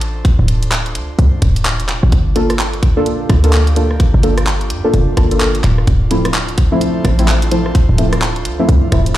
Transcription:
Already playing: A1 D4 F4 A4 C5
0.01 closed hi-hat
0.25 kick, closed hi-hat
0.39 D1
0.48 closed hi-hat
0.63 closed hi-hat
0.72 clap
0.86 closed hi-hat
0.95 D2, closed hi-hat
1.19 C2, closed hi-hat
1.42 D1, kick, closed hi-hat
1.56 closed hi-hat
1.65 clap
1.80 F1, closed hi-hat
1.89 D1, clap, closed hi-hat
2.03 A1
2.12 G1, kick, closed hi-hat
2.36 A#3 D4 F4 A4, closed hi-hat
2.50 cross-stick, closed hi-hat
2.59 clap
2.71 G4, closed hi-hat
2.83 G2, kick, closed hi-hat
2.97 A#3 D4 F4 A4
3.06 closed hi-hat
3.29 D2, kick, cross-stick, closed hi-hat
3.39 A#3
3.44 A#3 D4 F4 A4, closed hi-hat
3.53 clap
3.67 closed hi-hat
3.76 A#3 D4 F4 A4, closed hi-hat
3.91 cross-stick
4.00 kick, closed hi-hat
4.14 G1
4.23 A#3 D4 F4 A4, closed hi-hat
4.38 cross-stick, closed hi-hat
4.47 clap
4.61 closed hi-hat
4.70 G2, closed hi-hat
4.84 A#3 D4 F4 A4
4.94 F1, closed hi-hat
5.17 G1 A#3 D4 F4 A4, kick, cross-stick, closed hi-hat
5.31 A#3 D4 F4 A4, closed hi-hat
5.41 clap
5.55 closed hi-hat
5.64 D1, clap, closed hi-hat
5.78 cross-stick
5.87 D1, kick, closed hi-hat
6.10 F3 A3 C4 E4 A4 C5, closed hi-hat
6.25 cross-stick, closed hi-hat
6.34 clap
6.49 closed hi-hat
6.58 D2, kick, closed hi-hat
6.72 F3 A3 C4 E4
6.81 closed hi-hat
7.05 A1, kick, cross-stick, closed hi-hat
7.19 F3 A3 C4 E4, closed hi-hat
7.28 clap
7.42 closed hi-hat
7.51 F3 A3 C4 E4, closed hi-hat
7.66 cross-stick
7.75 kick, closed hi-hat
7.89 D1
7.98 F3 A3 C4 E4, closed hi-hat
8.13 cross-stick, closed hi-hat
8.22 clap
8.36 closed hi-hat
8.45 D2, closed hi-hat
8.59 F3 A3 C4 E4
8.69 C2, closed hi-hat
8.92 D1 F3 A3 C4 E4, kick, cross-stick, closed hi-hat
9.06 closed hi-hat

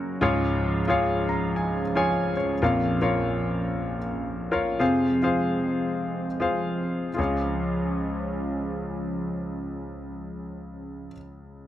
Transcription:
Already playing: F#2 C#3 F#3 A#3 C#4 F#4 A#4 C#5 F#5
0.20 C#2 G#2 F3 G#3 F4 G#4 C#5 F5
0.88 F4 G#4 C#5 F5
1.29 A#5
1.56 G#5
1.95 F4 G#4 C#5 G#5
2.10 F5
2.37 C#5
2.62 A#1 F2 A#3 F4 A#4 C#5 F5
3.02 F4 A#4 C#5 F5
4.51 F4 A#4 C#5 F5
4.79 F2 C3 F3 G#3 C4 F4 G#4 C5 F5
5.22 F4 G#4 C5 F5
6.40 F4 G#4 C5 F5
7.14 F3 C#4 F4 G#4
7.18 C#2 G#3 C#5 F5

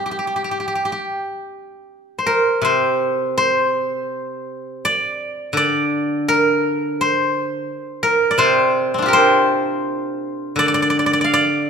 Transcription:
Already playing: G3 A#4 C5
0.06 G4
0.11 G4
0.19 G4
0.27 G4
0.36 G4
0.44 G4
0.51 G4
0.60 G4
0.68 G4
0.75 G4
0.85 G4
0.92 G4
2.19 C5
2.26 A#4
2.62 C3 C5
3.38 C5
4.85 D5
5.53 D3
5.57 D5
6.28 A#4
7.01 C5
8.03 A#4
8.31 D5
8.38 C3 C5
8.94 C4
8.98 D4 F4
9.06 G4 A#4
9.13 C5
10.56 D3 D5
10.68 D5
10.74 D5
10.82 D5
10.90 D5
10.99 D5
11.06 D5
11.13 D5
11.21 D5 F5
11.34 D5

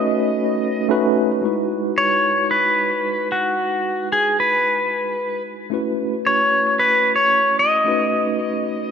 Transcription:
Already playing: A3 C#4 D#4 F#4 B4 D#5
0.89 A3 C#4 D#4 F#4 B4
1.41 G#3 D#4 E4 F#4 B4
1.98 C#5
2.51 B4
3.32 F#4
4.12 G#4
4.40 B4
5.70 A3 C#4 E4 F#4 B4
6.26 C#5
6.79 B4
7.16 C#5
7.59 D#5
7.84 A3 C#4 D#4 F#4 B4

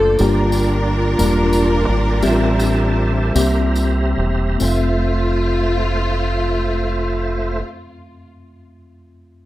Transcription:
Already playing: F#1 A#2 A3 A#3 D4 F4 A4 C5 D5
0.18 G1 G2 G3 A#3 D4 F4 G4 A#4 D5, tambourine
0.52 tambourine
1.19 E1 G3 A#3 D4 F4 A#4, tambourine
1.53 tambourine
1.88 G#1
2.21 A1 A2 G3 C4 G4 C5 E5 A5, tambourine
2.59 tambourine
3.34 C2 C3 G3 A#3 C4 G4 E5 A#5, tambourine
3.75 tambourine
4.17 E1
4.58 F1 F2 A3 C4 F4 C5 E5, tambourine
4.62 F4

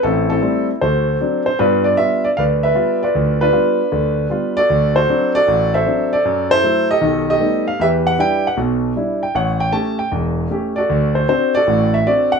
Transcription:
0.03 A1 C4 E4 A4
0.30 C4 E4 A4
0.42 G3 A3 C4
0.81 D2 F#4 A4 C5
1.21 F#3 C4 D4
1.46 C5
1.59 G2 B3 D4 F4 B4
1.84 D5
1.97 G3 B3 F4 E5
2.24 D5
2.37 D2 B4 D5 F5
2.63 B4 E5
2.75 G3 B3 F4
3.03 F4 B4 D5
3.15 D2
3.41 D4 F4 B4
3.52 G3 B3 F4
3.92 D2 D3
4.30 G3 B3 F4
4.57 F#4 A4 D5
4.70 D2
4.96 F#4 A4 C5
5.08 F#3 C4 D4
5.35 F#4 A4 D5
5.48 A1
5.74 A4 C5 E5
5.86 F#3 C4 D4
6.13 A4 D5
6.25 F#2
6.51 E4 A4 C5
6.63 F#3 A3 E4
6.91 G4 A4 D#5
7.01 B1 D#3
7.30 G4 A4 D#5
7.40 G3 A3 B3 D#4
7.68 F5
7.79 E2 G4 B4 E5
8.07 F#5
8.18 G3 D4 E4 G5
8.47 F#5
8.57 B1 B2
8.96 G3 D4 E4
9.23 G5
9.35 A1 C#5 F#5
9.60 G5
9.72 A3 C#4 G4 A5
9.99 G5
10.11 E1 E2
10.51 A3 C#4 G4
10.76 F#4 A4 D5
10.90 D2
11.15 C5
11.28 C4 D4 F#4 C5
11.55 F#4 A4 D5
11.67 A1 A2
11.94 E5
12.07 C4 D4 F#4 D5
12.32 F#5

